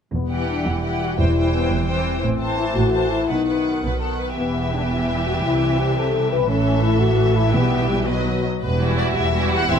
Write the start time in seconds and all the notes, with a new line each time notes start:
0.11 E1 E2 E3 G3 B3
0.29 E3 G4 F#5
0.49 D4
0.66 E1 E2 E4
0.83 E3 G4 F#5
1.01 F#4
1.17 E1 E2 E3 E4 C5 G5
1.36 E3 C5 G5
1.53 B3
1.70 E1 E2 C4
1.87 E3 C5 G5
2.19 A1 E3 A3
2.23 A2 C4
2.40 E3 C5 A5
2.58 E4
2.75 A1 A2 F#4
2.94 E3 C5 A5
3.11 E4
3.28 B1 B2 D#3 F#3 B3 D#4 B4 F#5
3.47 D#3 B4 F#5
3.83 B1 B2 B4
4.00 D#3 A4 F#5
4.19 B4
4.36 E1 E2 E3 G3 B3 G4 E5
4.74 D4
4.90 E4
5.26 F#4
5.43 C2 C3 C4 E4
5.79 G4
5.95 A4
6.31 B4
6.48 A1 A2 E3 A3 C#4 A4 E5
6.82 E4
7.00 F#4
7.35 E4
7.53 B1 B2 E3 G3 B3 G4
7.90 G3
8.08 D#3 F#3 B4 D#5
8.62 E1 E2 G3 B3 B4
8.80 E3 G3 E4 F#4
8.98 D5
9.16 E1 E2 E5
9.33 E3 G3 E4 F#4
9.53 F#5
9.68 E1 E2 E3 C4 E4 G4 E5